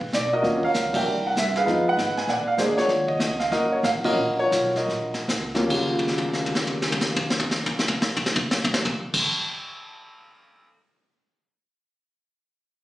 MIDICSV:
0, 0, Header, 1, 5, 480
1, 0, Start_track
1, 0, Key_signature, -6, "minor"
1, 0, Tempo, 308325
1, 665, Time_signature, 4, 2, 24, 8
1, 5466, Tempo, 328947
1, 6426, Tempo, 359066
1, 7386, Tempo, 407609
1, 8346, Tempo, 439560
1, 16132, End_track
2, 0, Start_track
2, 0, Title_t, "Grand piano"
2, 0, Program_c, 0, 0
2, 221, Note_on_c, 0, 74, 83
2, 486, Note_off_c, 0, 74, 0
2, 514, Note_on_c, 0, 66, 66
2, 519, Note_on_c, 0, 75, 93
2, 520, Note_on_c, 0, 70, 64
2, 654, Note_on_c, 0, 54, 69
2, 661, Note_on_c, 0, 65, 76
2, 664, Note_on_c, 0, 58, 65
2, 665, Note_on_c, 0, 61, 63
2, 931, Note_off_c, 0, 54, 0
2, 934, Note_off_c, 0, 65, 0
2, 936, Note_off_c, 0, 58, 0
2, 937, Note_off_c, 0, 61, 0
2, 971, Note_off_c, 0, 70, 0
2, 990, Note_on_c, 0, 73, 62
2, 995, Note_on_c, 0, 70, 61
2, 996, Note_off_c, 0, 75, 0
2, 1004, Note_on_c, 0, 77, 100
2, 1396, Note_off_c, 0, 66, 0
2, 1446, Note_on_c, 0, 55, 56
2, 1447, Note_on_c, 0, 58, 53
2, 1450, Note_off_c, 0, 70, 0
2, 1455, Note_on_c, 0, 62, 54
2, 1455, Note_on_c, 0, 66, 66
2, 1473, Note_on_c, 0, 70, 63
2, 1476, Note_on_c, 0, 76, 69
2, 1478, Note_off_c, 0, 77, 0
2, 1488, Note_on_c, 0, 79, 89
2, 1588, Note_off_c, 0, 73, 0
2, 1604, Note_off_c, 0, 55, 0
2, 1605, Note_off_c, 0, 58, 0
2, 1609, Note_off_c, 0, 62, 0
2, 1609, Note_off_c, 0, 66, 0
2, 1913, Note_off_c, 0, 79, 0
2, 1972, Note_on_c, 0, 78, 82
2, 2124, Note_off_c, 0, 76, 0
2, 2129, Note_off_c, 0, 78, 0
2, 2148, Note_on_c, 0, 76, 94
2, 2354, Note_off_c, 0, 70, 0
2, 2435, Note_off_c, 0, 76, 0
2, 2437, Note_on_c, 0, 71, 67
2, 2438, Note_on_c, 0, 68, 67
2, 2443, Note_on_c, 0, 77, 93
2, 2574, Note_on_c, 0, 56, 70
2, 2583, Note_on_c, 0, 59, 70
2, 2593, Note_on_c, 0, 63, 65
2, 2595, Note_on_c, 0, 65, 85
2, 2848, Note_off_c, 0, 56, 0
2, 2853, Note_off_c, 0, 59, 0
2, 2858, Note_off_c, 0, 63, 0
2, 2859, Note_off_c, 0, 65, 0
2, 2905, Note_off_c, 0, 71, 0
2, 2915, Note_off_c, 0, 77, 0
2, 2928, Note_on_c, 0, 71, 74
2, 2928, Note_on_c, 0, 75, 74
2, 2943, Note_on_c, 0, 78, 113
2, 3316, Note_off_c, 0, 68, 0
2, 3359, Note_off_c, 0, 78, 0
2, 3386, Note_on_c, 0, 80, 95
2, 3516, Note_off_c, 0, 71, 0
2, 3516, Note_off_c, 0, 75, 0
2, 3538, Note_off_c, 0, 80, 0
2, 3565, Note_on_c, 0, 74, 69
2, 3577, Note_on_c, 0, 78, 93
2, 3655, Note_off_c, 0, 78, 0
2, 3853, Note_on_c, 0, 77, 92
2, 4001, Note_on_c, 0, 56, 68
2, 4011, Note_off_c, 0, 77, 0
2, 4012, Note_on_c, 0, 58, 65
2, 4021, Note_on_c, 0, 72, 89
2, 4024, Note_on_c, 0, 62, 63
2, 4030, Note_on_c, 0, 68, 85
2, 4098, Note_off_c, 0, 72, 0
2, 4311, Note_on_c, 0, 66, 69
2, 4313, Note_on_c, 0, 65, 67
2, 4323, Note_on_c, 0, 73, 111
2, 4446, Note_off_c, 0, 74, 0
2, 4487, Note_off_c, 0, 56, 0
2, 4493, Note_off_c, 0, 58, 0
2, 4499, Note_off_c, 0, 62, 0
2, 4502, Note_off_c, 0, 68, 0
2, 4797, Note_on_c, 0, 75, 87
2, 4815, Note_off_c, 0, 73, 0
2, 4960, Note_off_c, 0, 75, 0
2, 4983, Note_on_c, 0, 75, 88
2, 5218, Note_off_c, 0, 66, 0
2, 5219, Note_off_c, 0, 65, 0
2, 5283, Note_on_c, 0, 77, 81
2, 5296, Note_off_c, 0, 75, 0
2, 5471, Note_off_c, 0, 77, 0
2, 5479, Note_on_c, 0, 70, 72
2, 5479, Note_on_c, 0, 75, 90
2, 5481, Note_on_c, 0, 66, 72
2, 5773, Note_on_c, 0, 73, 82
2, 5776, Note_off_c, 0, 75, 0
2, 5846, Note_off_c, 0, 73, 0
2, 5947, Note_on_c, 0, 77, 97
2, 6020, Note_off_c, 0, 77, 0
2, 6224, Note_off_c, 0, 66, 0
2, 6237, Note_off_c, 0, 70, 0
2, 6244, Note_on_c, 0, 54, 79
2, 6244, Note_on_c, 0, 61, 67
2, 6246, Note_on_c, 0, 66, 70
2, 6248, Note_on_c, 0, 58, 67
2, 6249, Note_on_c, 0, 65, 87
2, 6250, Note_on_c, 0, 75, 94
2, 6259, Note_on_c, 0, 70, 75
2, 6407, Note_off_c, 0, 54, 0
2, 6408, Note_off_c, 0, 61, 0
2, 6410, Note_off_c, 0, 58, 0
2, 6410, Note_off_c, 0, 65, 0
2, 6689, Note_off_c, 0, 75, 0
2, 6719, Note_off_c, 0, 66, 0
2, 6726, Note_on_c, 0, 73, 108
2, 6739, Note_on_c, 0, 66, 58
2, 6741, Note_on_c, 0, 65, 64
2, 7154, Note_off_c, 0, 70, 0
2, 7171, Note_off_c, 0, 73, 0
2, 7218, Note_off_c, 0, 66, 0
2, 7231, Note_on_c, 0, 70, 59
2, 7231, Note_on_c, 0, 75, 75
2, 7238, Note_on_c, 0, 66, 51
2, 7637, Note_off_c, 0, 65, 0
2, 7819, Note_off_c, 0, 75, 0
2, 8123, Note_off_c, 0, 70, 0
2, 8126, Note_off_c, 0, 66, 0
2, 8160, Note_on_c, 0, 58, 57
2, 8163, Note_on_c, 0, 54, 59
2, 8167, Note_on_c, 0, 39, 64
2, 8174, Note_on_c, 0, 65, 73
2, 8176, Note_on_c, 0, 61, 65
2, 8265, Note_off_c, 0, 39, 0
2, 8282, Note_on_c, 0, 39, 65
2, 8322, Note_on_c, 0, 49, 62
2, 8328, Note_off_c, 0, 58, 0
2, 8329, Note_off_c, 0, 54, 0
2, 8335, Note_off_c, 0, 61, 0
2, 8335, Note_off_c, 0, 65, 0
2, 8369, Note_on_c, 0, 54, 68
2, 8417, Note_on_c, 0, 65, 75
2, 12138, Note_off_c, 0, 39, 0
2, 12156, Note_off_c, 0, 49, 0
2, 12178, Note_off_c, 0, 54, 0
2, 12203, Note_off_c, 0, 65, 0
2, 16132, End_track
3, 0, Start_track
3, 0, Title_t, "Upright bass"
3, 0, Program_c, 1, 32
3, 197, Note_on_c, 1, 35, 72
3, 656, Note_off_c, 1, 35, 0
3, 675, Note_on_c, 1, 39, 80
3, 951, Note_off_c, 1, 39, 0
3, 1160, Note_on_c, 1, 37, 74
3, 1609, Note_off_c, 1, 37, 0
3, 1619, Note_on_c, 1, 36, 82
3, 2085, Note_off_c, 1, 36, 0
3, 2113, Note_on_c, 1, 43, 74
3, 2571, Note_off_c, 1, 43, 0
3, 2593, Note_on_c, 1, 41, 80
3, 3051, Note_off_c, 1, 41, 0
3, 3073, Note_on_c, 1, 44, 91
3, 3530, Note_off_c, 1, 44, 0
3, 3541, Note_on_c, 1, 46, 80
3, 4003, Note_off_c, 1, 46, 0
3, 4016, Note_on_c, 1, 41, 83
3, 4475, Note_off_c, 1, 41, 0
3, 4485, Note_on_c, 1, 39, 83
3, 4956, Note_off_c, 1, 39, 0
3, 4974, Note_on_c, 1, 37, 90
3, 5450, Note_off_c, 1, 37, 0
3, 5470, Note_on_c, 1, 30, 83
3, 5925, Note_off_c, 1, 30, 0
3, 5932, Note_on_c, 1, 33, 86
3, 6219, Note_off_c, 1, 33, 0
3, 6402, Note_on_c, 1, 34, 85
3, 6868, Note_off_c, 1, 34, 0
3, 6888, Note_on_c, 1, 35, 81
3, 7369, Note_off_c, 1, 35, 0
3, 7379, Note_on_c, 1, 34, 82
3, 7831, Note_off_c, 1, 34, 0
3, 7849, Note_on_c, 1, 37, 78
3, 8331, Note_off_c, 1, 37, 0
3, 8345, Note_on_c, 1, 39, 78
3, 12123, Note_off_c, 1, 39, 0
3, 16132, End_track
4, 0, Start_track
4, 0, Title_t, "Muted upright bass strokes"
4, 14, Note_on_c, 9, 29, 34
4, 169, Note_off_c, 9, 29, 0
4, 982, Note_on_c, 9, 29, 33
4, 1138, Note_off_c, 9, 29, 0
4, 6240, Note_on_c, 9, 29, 35
4, 6386, Note_off_c, 9, 29, 0
4, 16132, End_track
5, 0, Start_track
5, 0, Title_t, "Drums"
5, 19, Note_on_c, 9, 36, 55
5, 175, Note_off_c, 9, 36, 0
5, 198, Note_on_c, 9, 36, 18
5, 206, Note_on_c, 9, 38, 52
5, 206, Note_on_c, 9, 44, 45
5, 354, Note_off_c, 9, 36, 0
5, 362, Note_off_c, 9, 38, 0
5, 362, Note_off_c, 9, 44, 0
5, 680, Note_on_c, 9, 36, 16
5, 687, Note_on_c, 9, 25, 45
5, 687, Note_on_c, 9, 38, 37
5, 836, Note_off_c, 9, 36, 0
5, 843, Note_off_c, 9, 38, 0
5, 982, Note_on_c, 9, 36, 48
5, 1138, Note_off_c, 9, 36, 0
5, 1157, Note_on_c, 9, 36, 25
5, 1157, Note_on_c, 9, 38, 58
5, 1157, Note_on_c, 9, 44, 57
5, 1313, Note_off_c, 9, 36, 0
5, 1313, Note_off_c, 9, 38, 0
5, 1313, Note_off_c, 9, 44, 0
5, 1465, Note_on_c, 9, 36, 85
5, 1470, Note_on_c, 9, 49, 82
5, 1621, Note_off_c, 9, 36, 0
5, 1626, Note_off_c, 9, 49, 0
5, 1640, Note_off_c, 9, 25, 0
5, 1640, Note_on_c, 9, 25, 40
5, 2122, Note_on_c, 9, 36, 20
5, 2131, Note_on_c, 9, 38, 54
5, 2131, Note_on_c, 9, 44, 53
5, 2278, Note_off_c, 9, 36, 0
5, 2286, Note_off_c, 9, 38, 0
5, 2286, Note_off_c, 9, 44, 0
5, 2425, Note_on_c, 9, 38, 41
5, 2580, Note_off_c, 9, 38, 0
5, 2603, Note_on_c, 9, 36, 22
5, 2614, Note_off_c, 9, 25, 0
5, 2614, Note_on_c, 9, 25, 41
5, 2614, Note_on_c, 9, 38, 39
5, 2758, Note_off_c, 9, 36, 0
5, 2770, Note_off_c, 9, 38, 0
5, 3079, Note_on_c, 9, 36, 22
5, 3090, Note_on_c, 9, 38, 60
5, 3090, Note_on_c, 9, 44, 58
5, 3235, Note_off_c, 9, 36, 0
5, 3245, Note_off_c, 9, 38, 0
5, 3245, Note_off_c, 9, 44, 0
5, 3382, Note_on_c, 9, 38, 39
5, 3537, Note_off_c, 9, 38, 0
5, 3550, Note_on_c, 9, 36, 21
5, 3559, Note_off_c, 9, 25, 0
5, 3559, Note_on_c, 9, 25, 44
5, 3559, Note_on_c, 9, 38, 42
5, 3706, Note_off_c, 9, 36, 0
5, 3714, Note_off_c, 9, 38, 0
5, 4020, Note_on_c, 9, 38, 55
5, 4020, Note_on_c, 9, 44, 57
5, 4025, Note_on_c, 9, 36, 22
5, 4176, Note_off_c, 9, 38, 0
5, 4176, Note_off_c, 9, 44, 0
5, 4180, Note_off_c, 9, 36, 0
5, 4330, Note_on_c, 9, 38, 42
5, 4486, Note_off_c, 9, 38, 0
5, 4496, Note_on_c, 9, 36, 20
5, 4497, Note_off_c, 9, 25, 0
5, 4497, Note_on_c, 9, 25, 44
5, 4497, Note_on_c, 9, 38, 42
5, 4652, Note_off_c, 9, 36, 0
5, 4652, Note_off_c, 9, 38, 0
5, 4801, Note_on_c, 9, 36, 67
5, 4957, Note_off_c, 9, 36, 0
5, 4977, Note_on_c, 9, 36, 24
5, 4984, Note_on_c, 9, 38, 62
5, 4984, Note_on_c, 9, 44, 55
5, 5133, Note_off_c, 9, 36, 0
5, 5139, Note_off_c, 9, 38, 0
5, 5139, Note_off_c, 9, 44, 0
5, 5293, Note_on_c, 9, 38, 41
5, 5448, Note_off_c, 9, 38, 0
5, 5468, Note_on_c, 9, 36, 18
5, 5474, Note_off_c, 9, 25, 0
5, 5474, Note_on_c, 9, 25, 43
5, 5474, Note_on_c, 9, 38, 41
5, 5614, Note_off_c, 9, 36, 0
5, 5620, Note_off_c, 9, 38, 0
5, 5938, Note_on_c, 9, 36, 17
5, 5947, Note_on_c, 9, 38, 58
5, 5947, Note_on_c, 9, 44, 58
5, 6084, Note_off_c, 9, 36, 0
5, 6093, Note_off_c, 9, 38, 0
5, 6093, Note_off_c, 9, 44, 0
5, 6244, Note_on_c, 9, 36, 84
5, 6252, Note_on_c, 9, 49, 71
5, 6390, Note_off_c, 9, 36, 0
5, 6398, Note_off_c, 9, 49, 0
5, 6425, Note_off_c, 9, 25, 0
5, 6425, Note_on_c, 9, 25, 51
5, 6893, Note_on_c, 9, 36, 21
5, 6899, Note_on_c, 9, 38, 65
5, 6899, Note_on_c, 9, 44, 52
5, 7026, Note_off_c, 9, 36, 0
5, 7032, Note_off_c, 9, 38, 0
5, 7032, Note_off_c, 9, 44, 0
5, 7213, Note_on_c, 9, 38, 42
5, 7346, Note_off_c, 9, 38, 0
5, 7389, Note_on_c, 9, 36, 17
5, 7394, Note_off_c, 9, 25, 0
5, 7394, Note_on_c, 9, 25, 41
5, 7394, Note_on_c, 9, 38, 37
5, 7507, Note_off_c, 9, 36, 0
5, 7512, Note_off_c, 9, 38, 0
5, 7684, Note_on_c, 9, 38, 44
5, 7802, Note_off_c, 9, 38, 0
5, 7851, Note_on_c, 9, 36, 25
5, 7857, Note_on_c, 9, 38, 58
5, 7857, Note_on_c, 9, 44, 51
5, 7968, Note_off_c, 9, 36, 0
5, 7975, Note_off_c, 9, 38, 0
5, 7975, Note_off_c, 9, 44, 0
5, 8165, Note_on_c, 9, 38, 38
5, 8282, Note_off_c, 9, 38, 0
5, 8344, Note_on_c, 9, 49, 83
5, 8347, Note_on_c, 9, 36, 94
5, 8453, Note_off_c, 9, 49, 0
5, 8456, Note_off_c, 9, 36, 0
5, 8658, Note_on_c, 9, 43, 43
5, 8723, Note_off_c, 9, 25, 0
5, 8756, Note_on_c, 9, 38, 41
5, 8767, Note_off_c, 9, 43, 0
5, 8865, Note_off_c, 9, 38, 0
5, 8866, Note_on_c, 9, 43, 47
5, 8975, Note_off_c, 9, 43, 0
5, 9035, Note_on_c, 9, 38, 45
5, 9145, Note_off_c, 9, 38, 0
5, 9175, Note_on_c, 9, 43, 53
5, 9272, Note_on_c, 9, 38, 52
5, 9284, Note_off_c, 9, 43, 0
5, 9381, Note_off_c, 9, 38, 0
5, 9403, Note_on_c, 9, 43, 46
5, 9513, Note_off_c, 9, 43, 0
5, 9567, Note_on_c, 9, 38, 58
5, 9676, Note_off_c, 9, 38, 0
5, 9677, Note_on_c, 9, 43, 62
5, 9774, Note_on_c, 9, 38, 61
5, 9786, Note_off_c, 9, 43, 0
5, 9883, Note_off_c, 9, 38, 0
5, 9941, Note_on_c, 9, 43, 64
5, 10050, Note_off_c, 9, 43, 0
5, 10094, Note_on_c, 9, 38, 64
5, 10195, Note_on_c, 9, 43, 67
5, 10203, Note_off_c, 9, 38, 0
5, 10304, Note_off_c, 9, 43, 0
5, 10321, Note_on_c, 9, 38, 60
5, 10430, Note_off_c, 9, 38, 0
5, 10485, Note_on_c, 9, 43, 69
5, 10594, Note_off_c, 9, 43, 0
5, 10625, Note_on_c, 9, 38, 63
5, 10725, Note_on_c, 9, 43, 74
5, 10735, Note_off_c, 9, 38, 0
5, 10834, Note_off_c, 9, 43, 0
5, 10876, Note_on_c, 9, 38, 77
5, 10985, Note_off_c, 9, 38, 0
5, 11035, Note_on_c, 9, 43, 72
5, 11140, Note_on_c, 9, 38, 84
5, 11144, Note_off_c, 9, 43, 0
5, 11245, Note_on_c, 9, 43, 74
5, 11249, Note_off_c, 9, 38, 0
5, 11354, Note_off_c, 9, 43, 0
5, 11413, Note_on_c, 9, 38, 85
5, 11522, Note_off_c, 9, 38, 0
5, 11557, Note_on_c, 9, 43, 92
5, 11661, Note_on_c, 9, 38, 86
5, 11667, Note_off_c, 9, 43, 0
5, 11770, Note_off_c, 9, 38, 0
5, 11785, Note_on_c, 9, 43, 81
5, 11894, Note_off_c, 9, 43, 0
5, 12096, Note_on_c, 9, 49, 101
5, 12098, Note_on_c, 9, 36, 100
5, 12206, Note_off_c, 9, 49, 0
5, 12207, Note_off_c, 9, 36, 0
5, 16132, End_track
0, 0, End_of_file